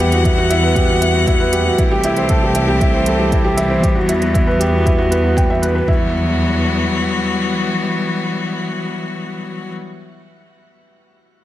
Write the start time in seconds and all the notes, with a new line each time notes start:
Already playing: E2 E3 G3 B3 B4 F#5
0.00 G4
0.12 F#4, closed hi-hat
0.25 E4, kick, closed hi-hat
0.38 F#4
0.50 E4, closed hi-hat
0.63 B4
0.76 G4, kick, closed hi-hat
0.89 F#4
1.01 E4, closed hi-hat
1.14 F#4
1.27 E4, kick, closed hi-hat
1.40 B4
1.53 G4, closed hi-hat
1.66 F#4
1.78 C2 E3 G3 A3 C4 E4 G4, kick, closed hi-hat
1.91 G4
2.04 E4, closed hi-hat
2.16 C5, closed hi-hat
2.29 A4, kick, closed hi-hat
2.43 G4
2.55 E4, closed hi-hat
2.68 G4
2.81 E4, kick, closed hi-hat
2.94 C5
3.06 A4, closed hi-hat
3.19 G4
3.32 E4, kick, closed hi-hat
3.44 G4
3.57 E4, closed hi-hat
3.70 C5
3.83 E2 B3 G4, kick, closed hi-hat
3.95 F#4
4.09 E4, closed hi-hat
4.22 F#4, closed hi-hat
4.34 E4, kick, closed hi-hat
4.47 B4
4.60 G4, closed hi-hat
4.73 F#4
4.86 E4, kick, closed hi-hat
4.98 F#4
5.11 B4, closed hi-hat
5.24 F#4
5.37 G5, kick, closed hi-hat
5.50 E5
5.62 B4, closed hi-hat
5.75 B4
5.88 E2 E3 F#3 G3 B3 E4 F#4, kick